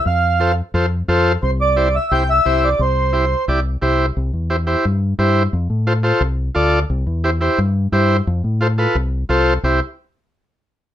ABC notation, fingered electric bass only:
X:1
M:4/4
L:1/8
Q:1/4=175
K:C
V:1 name="Fingered electric bass" clef=bass
F,,4 F,,2 F,,2 | C,,4 C,,2 C,,2 | C,,4 C,,2 C,,2 | C,, E,,3 G,,2 G,,2 |
F,, A,,3 C,,2 D,,2 | C,, E,,3 G,,2 G,,2 | F,, A,,3 C,,2 C,,2 | C,, z6 z |]